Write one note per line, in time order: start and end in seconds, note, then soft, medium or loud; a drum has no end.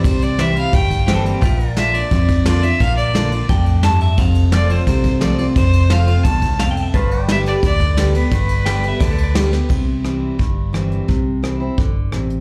0.00 1.40 C5 medium
0.00 1.40 E5 medium
0.00 1.40 G5 medium
0.04 0.64 C2 medium
0.04 0.70 C3 loud
0.04 0.25 C5 medium
0.04 kick loud
0.04 ride medium
0.22 0.42 D5 medium
0.22 ride medium
0.38 0.55 E3 medium
0.38 0.55 G3 medium
0.38 0.56 C4 medium
0.38 0.55 E4 medium
0.38 0.57 E5 loud
0.38 snare loud
0.38 ride medium
0.56 0.73 C4 soft
0.56 0.72 E4 medium
0.56 0.76 F5 loud
0.56 ride medium
0.73 1.33 G1 medium
0.73 1.39 G2 medium
0.73 1.08 G5 loud
0.73 kick loud
0.73 ride medium
0.90 kick medium
0.90 ride medium
1.07 1.40 E3 medium
1.07 1.40 G3 medium
1.07 1.24 C4 medium
1.07 1.41 C4 medium
1.07 1.41 E4 medium
1.07 1.25 A4 loud
1.07 snare loud
1.07 ride medium
1.24 1.42 A#3 medium
1.24 1.42 G4 medium
1.24 ride medium
1.41 2.02 A#1 medium
1.41 2.07 A#2 medium
1.41 1.67 F4 medium
1.41 1.67 C5 medium
1.41 1.69 E5 medium
1.41 1.70 G5 medium
1.41 kick loud
1.41 ride medium
1.60 ride medium
1.67 4.15 A#4 medium
1.67 4.16 D5 medium
1.67 4.17 F5 medium
1.76 1.93 D3 medium
1.76 1.94 A#3 medium
1.76 1.93 D4 medium
1.76 1.92 F4 medium
1.76 1.96 E5 medium
1.76 snare loud
1.76 ride medium
1.94 2.11 D4 soft
1.94 2.10 F4 medium
1.94 2.46 D5 medium
1.94 ride medium
2.11 2.71 F2 medium
2.11 2.77 F2 medium
2.11 kick loud
2.11 ride medium
2.29 kick medium
2.29 ride medium
2.45 2.62 D3 medium
2.45 2.62 A#3 medium
2.45 2.63 D4 medium
2.45 2.62 F4 loud
2.45 2.64 D5 medium
2.45 snare loud
2.45 ride medium
2.63 2.80 D4 soft
2.63 2.80 F4 medium
2.63 2.82 E5 loud
2.63 ride medium
2.80 3.40 A#1 medium
2.80 3.46 A#2 medium
2.80 2.96 F5 loud
2.80 kick loud
2.80 ride medium
2.97 3.62 D5 medium
2.97 ride medium
3.14 3.31 D3 medium
3.14 3.31 A#3 medium
3.14 3.32 D4 medium
3.14 3.31 F4 medium
3.14 snare loud
3.14 ride medium
3.32 3.49 D4 soft
3.32 3.48 F4 soft
3.32 ride medium
3.49 4.09 F2 loud
3.49 3.82 A2 medium
3.49 3.83 G5 medium
3.49 kick loud
3.49 ride medium
3.66 ride medium
3.83 4.17 G2 medium
3.83 4.01 A5 medium
3.83 snare loud
3.83 ride medium
4.00 4.18 E5 medium
4.00 ride medium
4.17 4.78 F1 loud
4.17 4.84 F2 medium
4.17 4.43 F5 medium
4.17 kick loud
4.17 ride medium
4.35 ride medium
4.52 4.69 F3 medium
4.52 4.69 A3 medium
4.52 4.70 C4 medium
4.52 4.69 F4 medium
4.52 4.73 A#4 medium
4.52 4.73 D5 medium
4.52 4.79 D5 medium
4.52 6.93 F5 medium
4.52 snare loud
4.52 ride medium
4.70 4.87 C4 soft
4.70 4.86 F4 medium
4.70 6.92 A4 medium
4.70 4.88 C5 medium
4.70 ride medium
4.79 6.92 C5 medium
4.87 5.47 C2 loud
4.87 5.53 C3 medium
4.87 5.20 C5 medium
4.87 kick loud
4.87 ride medium
5.04 kick medium
5.04 ride medium
5.21 5.38 F3 medium
5.21 5.38 A3 medium
5.21 5.38 C4 medium
5.21 5.37 F4 medium
5.21 5.37 D5 medium
5.21 snare loud
5.21 ride medium
5.38 5.56 C4 soft
5.38 5.55 F4 medium
5.38 5.46 D5 medium
5.38 ride medium
5.56 6.16 F1 medium
5.56 6.22 F2 loud
5.56 5.92 C5 loud
5.56 kick loud
5.56 ride medium
5.73 ride medium
5.90 6.07 F3 medium
5.90 6.07 A3 medium
5.90 6.08 C4 medium
5.90 6.06 F4 medium
5.90 6.25 F5 loud
5.90 snare loud
5.90 ride loud
6.07 6.25 C4 soft
6.07 6.24 F4 medium
6.07 ride medium
6.24 6.85 C2 medium
6.24 6.58 E2 medium
6.24 6.59 A5 loud
6.24 kick loud
6.24 ride loud
6.42 kick medium
6.42 ride medium
6.59 6.92 F2 medium
6.59 6.71 F5 loud
6.59 snare loud
6.59 ride medium
6.71 6.82 G5 medium
6.77 ride medium
6.82 6.94 E5 medium
6.94 7.54 G1 medium
6.94 7.60 G2 medium
6.94 7.20 A4 medium
6.94 7.19 B4 loud
6.94 7.21 C5 medium
6.94 7.22 F5 medium
6.94 kick loud
6.94 ride medium
7.11 ride medium
7.20 9.68 B4 medium
7.20 9.68 D5 medium
7.20 9.69 G5 medium
7.28 7.61 D3 medium
7.28 7.62 G3 medium
7.28 7.62 B3 medium
7.28 7.62 G4 loud
7.28 7.38 E5 loud
7.28 snare loud
7.28 ride medium
7.46 7.55 D5 loud
7.46 ride medium
7.63 8.23 D2 loud
7.63 7.96 D3 medium
7.63 7.96 D5 loud
7.63 kick loud
7.63 ride medium
7.80 kick medium
7.80 ride medium
7.97 8.14 D3 medium
7.97 8.14 G3 medium
7.97 8.14 B3 medium
7.97 8.14 G4 medium
7.97 snare loud
7.97 ride medium
8.15 8.32 B3 medium
8.15 8.31 G4 medium
8.15 9.32 B4 medium
8.15 ride medium
8.31 8.92 G1 loud
8.31 8.98 G2 loud
8.31 kick loud
8.31 ride medium
8.49 ride medium
8.65 8.83 D3 medium
8.65 8.83 G3 medium
8.65 8.83 B3 medium
8.65 8.82 G4 medium
8.65 8.88 G5 medium
8.65 snare loud
8.65 ride medium
8.83 9.01 B3 soft
8.83 9.00 G4 medium
8.83 ride medium
8.88 9.00 E5 medium
9.00 9.61 D2 medium
9.00 9.33 D3 medium
9.00 9.11 D5 medium
9.00 kick loud
9.00 ride medium
9.11 9.23 A4 medium
9.18 ride medium
9.24 9.34 D5 medium
9.34 9.52 D3 medium
9.34 9.52 G3 medium
9.34 9.52 B3 medium
9.34 9.51 G4 medium
9.34 9.52 B4 medium
9.34 snare loud
9.34 ride loud
9.52 9.70 B3 soft
9.52 9.69 G4 medium
9.52 snare medium
9.69 10.30 C2 medium
9.69 10.35 C3 medium
9.69 kick loud
9.69 crash medium
10.04 10.37 E3 soft
10.04 10.37 G3 soft
10.04 10.38 C4 soft
10.04 10.38 E4 medium
10.04 cross-stick loud
10.04 closed hi-hat medium
10.39 11.00 G1 medium
10.39 11.05 G2 medium
10.39 kick loud
10.39 closed hi-hat medium
10.73 11.06 E3 medium
10.73 11.07 G3 medium
10.73 11.07 C4 medium
10.73 11.07 E4 medium
10.73 cross-stick loud
10.73 closed hi-hat medium
10.92 closed hi-hat medium
11.08 11.69 C2 medium
11.08 11.74 C3 medium
11.08 kick medium
11.08 closed hi-hat medium
11.42 11.59 E3 soft
11.42 11.60 G3 soft
11.42 11.60 C4 medium
11.42 11.59 E4 soft
11.42 cross-stick loud
11.42 closed hi-hat medium
11.60 11.78 C4 soft
11.60 11.77 E4 soft
11.78 12.07 G1 medium
11.78 12.11 D3 medium
11.78 kick loud
11.78 closed hi-hat medium
12.12 12.40 A1 medium
12.12 12.40 C3 medium
12.12 cross-stick loud
12.12 closed hi-hat medium
12.30 closed hi-hat medium